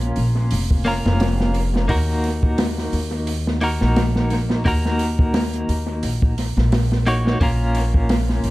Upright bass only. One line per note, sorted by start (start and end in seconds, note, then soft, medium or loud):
0.00 0.14 A#1 loud
0.17 0.51 A#1 medium
0.52 1.02 F1 medium
1.05 1.86 F1 loud
1.90 2.90 D#2 loud
2.93 3.77 D#2 medium
3.81 4.62 A#1 medium
4.66 5.66 D#2 loud
5.69 6.03 D#2 medium
6.03 6.53 A#1 medium
6.57 7.38 A#1 medium
7.41 8.41 A#1 loud
8.44 8.50 A#1 medium